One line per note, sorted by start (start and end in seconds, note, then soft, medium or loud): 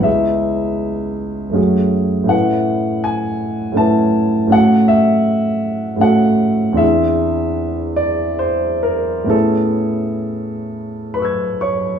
0.00 1.50 C#2 soft
0.00 1.50 B3 soft
0.00 1.51 C#4 soft
0.00 1.52 E4 soft
0.00 1.94 E5 soft
0.05 1.53 G#4 soft
1.50 2.27 F#2 soft
1.50 2.25 A3 soft
1.50 2.26 C#4 soft
1.54 2.29 F#4 soft
1.54 2.29 G#4 soft
2.24 3.71 A2 soft
2.24 3.72 A3 soft
2.24 3.74 C#4 soft
2.29 3.75 E4 soft
2.29 3.75 B4 soft
2.29 3.05 F#5 medium
3.04 3.79 G#5 medium
3.72 4.46 A2 soft
3.72 4.47 A3 soft
3.72 4.48 C#4 soft
3.77 4.51 E4 soft
3.77 4.52 B4 soft
3.77 4.53 A5 medium
4.47 5.95 A2 soft
4.47 5.97 A3 soft
4.47 5.98 C#4 soft
4.52 6.00 F#4 soft
4.52 6.00 A4 soft
4.52 4.91 F#5 medium
4.88 6.03 E5 medium
5.96 6.74 A2 soft
5.96 6.75 A3 soft
5.96 6.76 C#4 soft
6.01 6.76 F#4 soft
6.01 6.77 A4 soft
6.01 6.79 F#5 medium
6.73 9.25 E2 soft
6.73 9.25 C4 soft
6.73 9.26 D4 soft
6.77 9.27 E4 soft
6.77 9.27 G#4 soft
6.77 7.98 E5 medium
7.96 8.41 D5 medium
8.39 8.85 C5 medium
8.83 9.31 A#4 medium
9.24 11.97 A2 soft
9.24 11.98 B3 soft
9.24 11.98 C#4 soft
9.29 11.99 E4 soft
9.29 11.99 G#4 soft
9.29 11.61 A4 medium
11.14 11.58 B4 soft
11.14 11.99 B5 soft
11.19 11.60 C#6 soft
11.19 11.99 E6 soft
11.25 11.99 G#6 soft
11.61 11.99 C#5 soft
11.61 11.99 C#6 medium